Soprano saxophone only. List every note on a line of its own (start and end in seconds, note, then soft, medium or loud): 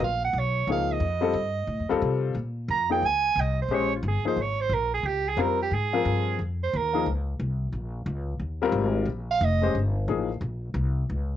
0.04 0.22 F5 medium
0.25 0.40 F#5 medium
0.39 0.70 C#5 medium
0.72 0.94 F5 medium
0.92 2.03 D#5 medium
2.71 2.89 A#5 medium
2.92 3.07 G5 medium
3.06 3.42 G#5 loud
3.40 3.59 D#5 medium
3.62 3.75 C5 medium
3.74 3.93 C#5 medium
3.96 4.09 F4 soft
4.08 4.27 G#4 medium
4.27 4.43 C5 medium
4.41 4.63 C#5 medium
4.61 4.75 C5 medium
4.74 4.93 A#4 medium
4.94 5.08 G#4 medium
5.07 5.30 G4 medium
5.28 5.42 G#4 medium
5.40 5.60 A#4 medium
5.62 5.76 G4 medium
5.74 6.40 G#4 medium
6.63 6.78 C5 medium
6.77 7.08 A#4 medium
9.31 9.46 F5 loud
9.44 9.77 D#5 medium